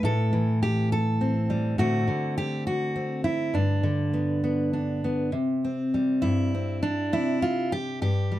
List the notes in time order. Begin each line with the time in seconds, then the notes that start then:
Already playing: A3 C4
0.03 A2 A4
0.33 E3
0.63 G4
0.92 A4
1.21 C4
1.50 G3
1.78 A2 D3 A3 C4 F#4
2.08 D3
2.38 G4
2.67 F#4
2.96 C4
3.24 E4
3.54 G2 D4
3.83 D3
4.14 B3
4.44 B3
4.73 D4
5.04 B3
5.32 C3
5.64 C4
5.94 G3
6.22 G2 E4
6.54 C4
6.83 D4
7.13 C3 E4
7.42 F4
7.72 G4
8.01 G2 G4
8.32 G3